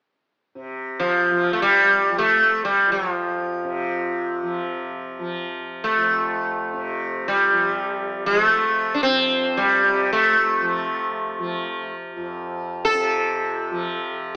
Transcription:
0.55 tanpura C3
1.00 sitar F3
1.31 tanpura F3
1.53 sitar A3
1.62 sitar G3
2.10 tanpura F3
2.18 sitar A3
2.65 sitar G3
2.86 tanpura F2
2.92 sitar F#3
3.11 sitar F3
3.64 tanpura C3
4.42 tanpura F3
5.19 tanpura F3
5.84 sitar A3
5.96 tanpura F2
6.73 tanpura C3
7.28 sitar G3
7.52 tanpura F3
8.26 tanpura F3, sitar G#3
8.43 sitar A3
8.94 sitar D4
9.03 sitar C4
9.07 tanpura F2
9.57 sitar G3
9.83 tanpura C3
10.13 sitar A3
10.61 tanpura F3
11.39 tanpura F3
12.17 tanpura F2
12.85 sitar A4
12.94 tanpura C3
13.71 tanpura F3

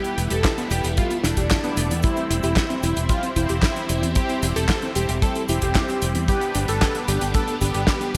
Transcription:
Already playing: string machine G3 A3 E4, analog polysynth B3 E4 G4 B4, analog synth lead G4
0.04 synth arpeggio sound B3, closed hi-hat, cabasa
0.18 fingered electric bass E1, synth arpeggio sound E4, closed hi-hat, cabasa
0.30 fingered electric bass E1, synth arpeggio sound G4, analog synth lead A4, closed hi-hat, cabasa
0.44 synth arpeggio sound E4, kick, snare, clap, closed hi-hat, cabasa
0.58 synth arpeggio sound B3, closed hi-hat, cabasa
0.70 fingered electric bass E1, synth arpeggio sound G3, analog synth lead G4, closed hi-hat, cabasa
0.84 fingered electric bass E1, synth arpeggio sound B3, closed hi-hat, cabasa
0.97 synth arpeggio sound G3, analog synth lead F4, kick, closed hi-hat, cabasa
1.11 synth arpeggio sound B3, closed hi-hat, cabasa
1.24 fingered electric bass E1, analog synth lead D4, synth arpeggio sound E4, snare, closed hi-hat, cabasa
1.37 fingered electric bass E1, synth arpeggio sound G4, kick, closed hi-hat, cabasa
1.50 synth arpeggio sound E4, kick, snare, clap, closed hi-hat, cabasa
1.64 analog polysynth B3 E4 G4 D5, synth arpeggio sound B3, closed hi-hat, cabasa
1.77 fingered electric bass E1, synth arpeggio sound G3, closed hi-hat, cabasa
1.90 fingered electric bass E2, synth arpeggio sound B3, closed hi-hat, cabasa
2.02 synth arpeggio sound G3, string machine G3 C4, analog polysynth C4 E4 G4 C5, analog synth lead E4, kick, closed hi-hat, cabasa
2.16 synth arpeggio sound C4, closed hi-hat, cabasa
2.30 fingered electric bass E1, synth arpeggio sound E4, closed hi-hat, cabasa
2.43 fingered electric bass E1, analog synth lead E4, synth arpeggio sound G4, closed hi-hat, cabasa
2.56 synth arpeggio sound E4, kick, snare, clap, closed hi-hat, cabasa
2.70 synth arpeggio sound C4, closed hi-hat, cabasa
2.83 fingered electric bass E1, synth arpeggio sound G3, analog synth lead E4, closed hi-hat, cabasa
2.96 fingered electric bass E1, synth arpeggio sound C4, closed hi-hat, cabasa
3.09 synth arpeggio sound G3, analog synth lead F4, kick, closed hi-hat, cabasa
3.23 synth arpeggio sound C4, closed hi-hat, cabasa
3.36 fingered electric bass E1, analog polysynth C4 E4 G4 C5, analog synth lead E4, synth arpeggio sound E4, kick, closed hi-hat, cabasa
3.49 fingered electric bass E1, synth arpeggio sound G4, closed hi-hat, cabasa
3.62 synth arpeggio sound E4, kick, snare, clap, closed hi-hat, cabasa
3.76 synth arpeggio sound C4, closed hi-hat, cabasa
3.89 fingered electric bass E1, synth arpeggio sound G3, closed hi-hat, cabasa
4.03 fingered electric bass E2, synth arpeggio sound C4, closed hi-hat, cabasa
4.15 synth arpeggio sound G3, analog polysynth C4 E4 G4 C5, analog synth lead G4, kick, closed hi-hat, cabasa
4.29 synth arpeggio sound C4, closed hi-hat, cabasa
4.42 fingered electric bass E1, synth arpeggio sound E4, closed hi-hat, cabasa
4.56 fingered electric bass E1, synth arpeggio sound G4, analog synth lead A4, closed hi-hat, cabasa
4.69 synth arpeggio sound E4, kick, snare, clap, closed hi-hat, cabasa
4.82 synth arpeggio sound C4, closed hi-hat, cabasa
4.95 fingered electric bass E1, synth arpeggio sound G3, analog synth lead G4, closed hi-hat, cabasa
5.09 fingered electric bass E1, synth arpeggio sound C4, closed hi-hat, cabasa
5.22 synth arpeggio sound G3, analog synth lead A4, kick, closed hi-hat, cabasa
5.35 synth arpeggio sound C4, closed hi-hat, cabasa
5.48 fingered electric bass E1, analog polysynth C4 E4 G4 C5, synth arpeggio sound E4, analog synth lead G4, closed hi-hat, cabasa
5.62 fingered electric bass E1, synth arpeggio sound G4, kick, closed hi-hat, cabasa
5.75 synth arpeggio sound E4, kick, snare, clap, closed hi-hat, cabasa
5.88 synth arpeggio sound C4, closed hi-hat, cabasa
6.02 fingered electric bass E1, synth arpeggio sound G3, closed hi-hat, cabasa
6.15 fingered electric bass E2, synth arpeggio sound C4, closed hi-hat, cabasa
6.28 synth arpeggio sound G3, analog polysynth B3 D4 G4 B4, string machine B3 D4, analog synth lead G4, kick, closed hi-hat, cabasa
6.41 synth arpeggio sound B3, closed hi-hat, cabasa
6.55 fingered electric bass G1, synth arpeggio sound D4, closed hi-hat, cabasa
6.68 fingered electric bass G1, synth arpeggio sound G4, analog synth lead A4, closed hi-hat, cabasa
6.81 synth arpeggio sound D4, kick, snare, clap, closed hi-hat, cabasa
6.95 synth arpeggio sound B3, closed hi-hat, cabasa
7.08 fingered electric bass G1, synth arpeggio sound G3, analog synth lead G4, closed hi-hat, cabasa
7.21 fingered electric bass G1, synth arpeggio sound B3, closed hi-hat, cabasa
7.34 synth arpeggio sound G3, analog synth lead A4, kick, closed hi-hat, cabasa
7.48 synth arpeggio sound B3, closed hi-hat, cabasa
7.61 fingered electric bass G1, analog polysynth B3 D4 G4 B4, synth arpeggio sound D4, analog synth lead G4, kick, closed hi-hat, cabasa
7.74 fingered electric bass G1, synth arpeggio sound G4, closed hi-hat, cabasa
7.87 synth arpeggio sound D4, kick, snare, clap, closed hi-hat, cabasa
8.01 synth arpeggio sound B3, closed hi-hat, cabasa

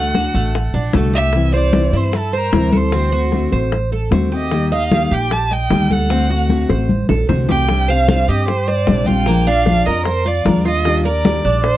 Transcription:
Already playing: upright bass D2, cuban tres A3, nylon-string guitar A3 D4 F#4, violin F#5
0.14 nylon-string guitar D3 A3 D4 F#4, cuban tres F#4, high bongo, high conga
0.34 upright bass A1, cuban tres A3, nylon-string guitar A3 D4 F#4, high bongo, high conga
0.54 muted nylon-string guitar stroke, high bongo, high conga
0.74 upright bass A#1, cuban tres D4, high bongo, high conga
0.93 upright bass C2, nylon-string guitar D3 A3 D4 F#4, cuban tres A3, high bongo, low bongo, high conga
1.13 nylon-string guitar A3 D4 F#4, cuban tres G4, violin E5, high bongo
1.33 nylon-string guitar C3 E3 G3 C4 E4, high bongo, high conga
1.53 nylon-string guitar G3 C4 E4, cuban tres C5, violin D5, high bongo, high conga
1.73 nylon-string guitar C3 E3 G3 C4 E4, high bongo, high conga
1.92 upright bass G2, nylon-string guitar G3 C4 E4, cuban tres E4, violin C5, high conga
2.13 muted nylon-string guitar stroke, high bongo, high conga
2.17 violin A4
2.33 cuban tres C5, high bongo, high conga
2.37 violin A#4
2.53 upright bass D2, nylon-string guitar C3 E3 G3 C4 E4, high bongo, low bongo, high conga
2.72 nylon-string guitar G3 C4 E4, cuban tres A4, high bongo, high conga
2.77 violin C5
2.92 nylon-string guitar D3 A3 C4 F#4, cuban tres C4, high bongo, high conga
3.12 nylon-string guitar A3 C4 F#4, cuban tres F#4, high conga
3.32 nylon-string guitar D3 A3 C4 F#4, high bongo, high conga
3.52 upright bass A1, nylon-string guitar A3 C4 F#4, cuban tres C5, high bongo, high conga
3.72 muted nylon-string guitar stroke, high bongo, high conga
3.92 cuban tres A4, high bongo, high conga
4.11 upright bass D#2, nylon-string guitar D3 A3 C4 F#4, cuban tres C5, high bongo, low bongo, high conga
4.32 nylon-string guitar A3 C4 F#4, cuban tres G4, violin D#5, high bongo
4.51 nylon-string guitar D#3 G3 A#3 D#4 G4, high bongo, high conga
4.71 nylon-string guitar A#3 D#4 G4, cuban tres D#5, violin F5, high bongo, high conga
4.91 nylon-string guitar D#3 G3 A#3 D#4 G4, high bongo, high conga
5.11 upright bass A#1, nylon-string guitar A#3 D#4 G4, cuban tres G4, violin G5, high conga
5.31 violin A5, muted nylon-string guitar stroke, high bongo, high conga
5.51 cuban tres D#5, violin G5, high bongo, high conga
5.70 upright bass D2, nylon-string guitar D#3 G3 A#3 D#4 G4, high bongo, low bongo, high conga
5.90 nylon-string guitar A#3, cuban tres A4, violin F#5, high bongo, high conga
6.10 nylon-string guitar D3 A3 C4 F#4, cuban tres C4, high bongo
6.30 nylon-string guitar A3 C4 F#4, cuban tres F#4, high conga
6.50 nylon-string guitar D3 A3 C4 F#4, high bongo, high conga
6.69 upright bass A1, nylon-string guitar A3 C4 F#4, cuban tres C5, high bongo, high conga
6.89 muted nylon-string guitar stroke, high conga
7.09 upright bass A#1, cuban tres A4, low bongo, low conga
7.29 upright bass C2, nylon-string guitar D3 A3 C4 F#4, cuban tres C5, low bongo, low conga
7.49 nylon-string guitar A3 C4 F#4, cuban tres G4, violin G5, low bongo, low conga
7.69 nylon-string guitar C3 G3 C4 D4 G4, high bongo, high conga
7.88 nylon-string guitar C4 D4 G4, cuban tres C5, violin F5, high bongo, high conga
8.08 nylon-string guitar C3 G3 C4 D4 G4, high bongo, high conga
8.28 upright bass G2, nylon-string guitar C4 D4 G4, cuban tres G4, violin D#5, high conga
8.48 violin C5, muted nylon-string guitar stroke, high bongo, high conga
8.68 cuban tres C5, violin D5, high bongo, high conga
8.87 upright bass A#1, nylon-string guitar C3 G3 C4 D4 G4, high bongo, low bongo, high conga
9.06 nylon-string guitar C4 D4 G4, cuban tres F4, violin G5, high bongo, high conga
9.26 nylon-string guitar F3 G#3 D4 F4, cuban tres A#3, high bongo, high conga
9.47 nylon-string guitar G#3 D4 F4, cuban tres D4, violin F5, high conga
9.66 nylon-string guitar F3 G#3 D4 F4, high bongo, high conga
9.86 upright bass F2, nylon-string guitar G#3 D4 F4, cuban tres A#4, violin D#5, high bongo, high conga
10.05 violin C5, muted nylon-string guitar stroke, high bongo, high conga
10.25 cuban tres F4, violin D5, high bongo, high conga
10.45 upright bass D#2, nylon-string guitar F3 G#3 D4 F4, cuban tres A#4, high bongo, low bongo, high conga
10.65 nylon-string guitar G#3 D4 F4, cuban tres F4, violin D#5, high bongo
10.85 nylon-string guitar D#3 G3 D4 G4, high bongo, high conga
11.05 nylon-string guitar G3 D4 G4, cuban tres A#4, violin D5, high bongo, high conga
11.24 nylon-string guitar D#3 G3 D4 G4, high bongo, high conga
11.45 upright bass A#1, nylon-string guitar G3 D4 G4, cuban tres D4, high conga
11.64 violin C5, muted nylon-string guitar stroke, high bongo, high conga

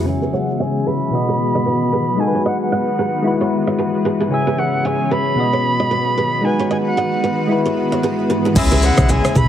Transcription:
0.04 synth keys C#3 C#4 G#4, ambient pad C#3 E3 G#3 E4 G#4, flute G#5
0.09 synth keys E5
0.22 nylon-string guitar G#4 B4
0.33 nylon-string guitar A4 C#5, flute F#5
0.60 nylon-string guitar C#5 E5, flute G#5
0.86 nylon-string guitar G#4 B4, flute B5
1.10 synth keys B2 B3 F#4, ambient pad D#3 F#3 B3 F#4 B4
1.15 synth keys D#5
1.28 nylon-string guitar A4 C#5
1.55 nylon-string guitar B4 D#5
1.66 nylon-string guitar F#4 B4
1.93 nylon-string guitar G#4 B4
2.16 ambient pad D#3 G#3 F#4, synth keys G#3 D#4 F#4, flute G#5
2.21 synth keys A4
2.28 synth keys B4
2.35 nylon-string guitar A4 C#5
2.46 nylon-string guitar B4 D#5, flute F#5
2.62 flute F#5
2.72 nylon-string guitar D#5 F#5
2.99 nylon-string guitar G#4 B4
3.22 ambient pad G#2 E3 G#3 F#4 B4, synth keys G#3 E4 F#4
3.27 synth keys B4
3.41 nylon-string guitar A4 C#5
3.67 nylon-string guitar C#5 E5
3.79 nylon-string guitar G#4 B4
4.05 nylon-string guitar G#4 B4
4.20 nylon-string guitar E4 G#4
4.29 synth keys C#3 C#4 G#4, ambient pad C#4 G#4 C#5, flute G#5
4.34 synth keys E5
4.47 nylon-string guitar G#4 B4
4.58 nylon-string guitar A4 C#5, flute F#5
4.85 nylon-string guitar C#5 E5, flute G#5
5.11 nylon-string guitar G#4 B4, flute B5
5.35 synth keys B2 B3 F#4, ambient pad D#3 F#3 B3 F#4 B4
5.40 synth keys D#5
5.53 nylon-string guitar A4 C#5
5.80 nylon-string guitar B4 D#5
5.91 nylon-string guitar F#4 B4
6.18 nylon-string guitar G#4 B4
6.41 ambient pad D#3 G#3, synth keys G#3 D#4 F#4, flute G#5
6.46 synth keys B4
6.59 nylon-string guitar A4 C#5
6.71 nylon-string guitar B4 D#5, flute G#5
6.87 flute F#5
6.97 nylon-string guitar D#5 F#5
7.24 nylon-string guitar G#4 B4
7.47 ambient pad G#2 E3, synth keys G#3 E4 F#4
7.52 synth keys B4
7.66 nylon-string guitar A4 C#5
7.92 nylon-string guitar C#5 E5
8.03 nylon-string guitar G#4 B4
8.30 nylon-string guitar G#4 B4
8.45 nylon-string guitar E4 G#4
8.54 analog synth bass C#2, synth keys C#3 C#4 G#4, horn section C#3 G#3 E4, ambient pad C#3 E3 G#3 E4 G#4, flute G#5, kick, crash, low conga, shaker
8.59 synth keys E5
8.71 nylon-string guitar G#4 B4, high conga, shaker
8.82 nylon-string guitar A4 C#5, flute F#5, shaker
8.98 analog synth bass B1, kick, cross-stick, high conga, shaker
9.09 nylon-string guitar C#5 E5, flute G#5, low conga, shaker
9.25 cross-stick, high conga, shaker
9.35 analog synth bass C#2, nylon-string guitar G#4 B4, flute B5, kick, mid tom, shaker

